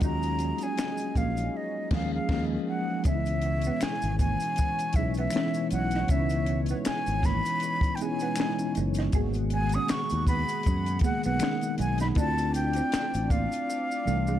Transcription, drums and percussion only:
0.01 kick, closed hi-hat, maracas
0.23 closed hi-hat, maracas
0.39 closed hi-hat, maracas
0.58 closed hi-hat, maracas
0.78 finger snap, snare, closed hi-hat, maracas
0.98 closed hi-hat, maracas
1.15 kick, closed hi-hat, maracas
1.37 closed hi-hat, maracas
1.91 kick, snare, crash
2.29 kick, snare, crash
3.04 kick, closed hi-hat, maracas
3.26 closed hi-hat, maracas
3.42 closed hi-hat
3.62 closed hi-hat, maracas
3.81 finger snap, snare, closed hi-hat, maracas
3.83 finger snap
4.02 closed hi-hat, maracas
4.19 kick, closed hi-hat, maracas
4.40 closed hi-hat, maracas
4.56 kick, closed hi-hat, maracas
4.79 closed hi-hat, maracas
4.93 kick, closed hi-hat, maracas
5.14 closed hi-hat, maracas
5.30 finger snap, closed hi-hat, maracas
5.36 finger snap, snare
5.54 closed hi-hat, maracas
5.71 closed hi-hat, maracas
5.91 snare, closed hi-hat, maracas
6.08 kick, closed hi-hat, maracas
6.29 closed hi-hat, maracas
6.46 closed hi-hat
6.66 closed hi-hat, maracas
6.85 finger snap, snare, closed hi-hat, maracas
6.87 finger snap
7.06 closed hi-hat, maracas
7.23 kick, snare, closed hi-hat, maracas
7.45 closed hi-hat, maracas
7.60 closed hi-hat, maracas
7.81 kick, closed hi-hat, maracas
7.97 closed hi-hat, maracas
8.19 closed hi-hat, maracas
8.36 finger snap, closed hi-hat, maracas
8.40 finger snap, snare
8.59 closed hi-hat, maracas
8.75 closed hi-hat, maracas
8.94 closed hi-hat, maracas
8.98 snare
9.12 kick, closed hi-hat, maracas
9.34 closed hi-hat, maracas
9.50 closed hi-hat
9.69 closed hi-hat, maracas
9.88 finger snap, snare, closed hi-hat, maracas
10.09 closed hi-hat, maracas
10.27 kick, closed hi-hat, maracas
10.48 closed hi-hat, maracas
10.63 kick, closed hi-hat, maracas
10.86 closed hi-hat, maracas
10.99 kick, closed hi-hat
11.04 maracas
11.23 closed hi-hat, maracas
11.39 finger snap, snare, closed hi-hat, maracas
11.44 finger snap
11.61 closed hi-hat, maracas
11.78 closed hi-hat, maracas
11.98 snare, closed hi-hat, maracas
12.15 kick, closed hi-hat, maracas
12.38 closed hi-hat, maracas
12.54 closed hi-hat, maracas
12.73 closed hi-hat, maracas
12.92 finger snap, snare, closed hi-hat, maracas
13.14 closed hi-hat, maracas
13.30 kick, closed hi-hat, maracas
13.52 closed hi-hat, maracas
13.70 maracas
13.91 maracas
14.07 maracas
14.27 maracas

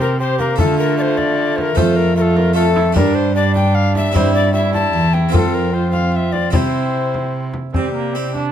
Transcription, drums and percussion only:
0.00 frame drum
0.39 frame drum
0.58 frame drum
1.18 frame drum
1.58 frame drum
1.77 frame drum
2.37 frame drum
2.76 frame drum
2.96 frame drum
3.56 frame drum
3.95 frame drum
4.15 frame drum
4.74 frame drum
5.14 frame drum
5.34 frame drum
5.94 frame drum
6.34 frame drum
6.53 frame drum
7.14 frame drum
7.54 frame drum
7.74 frame drum
8.35 frame drum

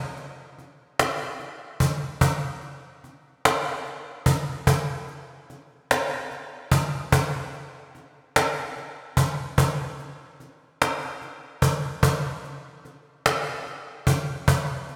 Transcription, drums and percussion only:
0.17 cajon slap
0.58 cajon slap
0.99 cajon slap
1.39 cajon slap
1.80 cajon bass
2.21 cajon bass
2.62 cajon slap
3.04 cajon slap
3.45 cajon slap
3.86 cajon slap
4.26 cajon bass
4.67 cajon bass
5.08 cajon slap
5.50 cajon slap
5.91 cajon slap
6.31 cajon slap
6.71 cajon bass
7.12 cajon bass
7.53 cajon slap
7.95 cajon slap
8.36 cajon slap
8.76 cajon slap
9.17 cajon bass
9.58 cajon bass
9.99 cajon slap
10.40 cajon slap
10.82 cajon slap
11.22 cajon slap
11.62 cajon bass
12.03 cajon bass
12.44 cajon slap
12.85 cajon slap
13.26 cajon slap
13.66 cajon slap
14.07 cajon bass
14.48 cajon bass
14.89 cajon slap

